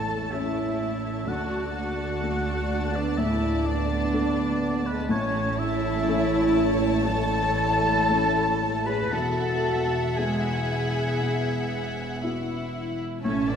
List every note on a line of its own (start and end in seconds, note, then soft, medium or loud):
0.00 1.24 A1 soft
0.00 0.90 E2 soft
0.00 0.32 A3 soft
0.00 1.24 A3 soft
0.00 0.32 C#4 soft
0.00 0.32 E4 medium
0.00 0.33 A4 medium
0.00 0.33 A4 soft
0.00 1.24 C#5 soft
0.00 0.32 A5 medium
0.00 0.33 A5 medium
0.00 1.25 A5 soft
0.31 1.24 A3 soft
0.31 1.28 C#4 medium
0.31 1.24 C#4 soft
0.31 1.28 E4 medium
0.31 1.25 A4 soft
0.31 0.99 E5 soft
0.31 1.30 E5 medium
1.27 2.20 D2 soft
1.27 5.10 D2 medium
1.27 5.05 A3 soft
1.27 1.75 D4 medium
1.27 1.74 F#4 medium
1.27 5.06 D5 soft
1.27 1.74 F#5 medium
1.27 1.75 F#5 medium
1.27 5.06 A5 soft
1.75 2.92 D4 medium
1.75 2.91 F#4 medium
1.75 2.94 F#5 medium
1.75 2.97 F#5 medium
2.23 3.14 A3 soft
2.23 3.14 D4 soft
2.23 3.14 A4 soft
2.93 3.17 B3 medium
2.93 3.19 D4 medium
2.93 3.19 D5 medium
3.17 4.71 A2 soft
3.17 3.66 C#3 medium
3.17 3.66 E4 medium
3.17 3.67 E5 medium
3.17 3.64 E5 medium
3.64 4.87 B3 medium
3.64 4.86 D4 medium
3.64 4.87 D5 medium
3.64 4.88 D5 medium
4.13 5.06 A3 soft
4.13 5.06 D4 soft
4.13 5.06 A4 soft
4.85 5.10 G#3 medium
4.85 5.09 B3 medium
4.85 5.10 B4 medium
5.09 9.13 A1 medium
5.09 6.03 A2 medium
5.09 5.43 A3 medium
5.09 9.09 A3 medium
5.09 5.58 C#4 medium
5.09 9.08 C#5 medium
5.09 5.59 C#5 medium
5.09 5.60 C#5 medium
5.09 9.09 A5 medium
5.58 7.05 C#4 medium
5.58 7.08 E4 medium
5.58 6.78 E5 medium
5.58 6.79 E5 medium
6.08 7.05 A3 medium
6.08 7.05 C#4 soft
6.08 7.05 A4 medium
7.07 8.71 E3 medium
7.07 8.83 E4 loud
7.07 8.86 A4 medium
7.07 8.82 A5 loud
7.07 8.88 A5 medium
8.09 9.09 A3 soft
8.09 9.09 C#4 soft
8.09 9.09 A4 soft
8.86 9.12 G#4 medium
8.86 9.12 B4 medium
8.86 9.14 B5 medium
8.86 9.11 B5 medium
9.12 12.99 E1 medium
9.12 10.14 E2 soft
9.12 10.03 B3 soft
9.12 10.16 F#4 medium
9.12 10.17 A4 medium
9.12 12.99 E5 medium
9.12 12.99 F#5 medium
9.12 10.19 A5 medium
9.12 10.18 A5 medium
10.17 10.66 G#3 medium
10.17 11.17 B3 soft
10.17 11.17 E4 soft
10.17 12.23 E4 medium
10.17 11.17 F#4 soft
10.17 12.22 G#4 medium
10.17 12.22 G#5 medium
10.69 12.19 B3 medium
11.21 12.84 B2 soft
12.22 13.20 B3 soft
12.22 13.23 E4 medium
12.22 13.21 E4 soft
12.22 13.21 F#4 soft
13.23 13.56 A1 medium
13.23 13.56 A2 medium
13.23 13.47 A3 medium
13.23 13.56 C#4 medium
13.23 13.47 C#4 medium
13.23 13.51 C#5 medium
13.23 13.50 C#5 medium
13.23 13.56 E5 medium
13.23 13.56 A5 medium
13.48 13.56 B3 medium
13.48 13.56 D4 medium
13.48 13.56 D5 medium